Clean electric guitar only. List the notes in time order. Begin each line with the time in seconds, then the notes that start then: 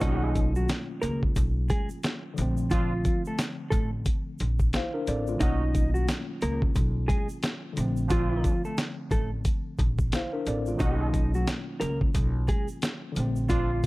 0.01 D#4 D#5
0.56 F#3 F#4
1.02 A#3 A#4
1.70 G#3 G#4
2.71 F3 F4
3.27 A3 A4
3.70 A3 A4
5.40 D#4 D#5
5.94 F#3 F#4
6.42 A#3 A#4
7.08 G#3 G#4
8.11 F3 F4
8.65 A3 A4
9.12 A3 A4
10.80 D#4 D#5
11.35 F#3 F#4
11.80 A#3 A#4
12.49 G#3 G#4
13.50 F3 F4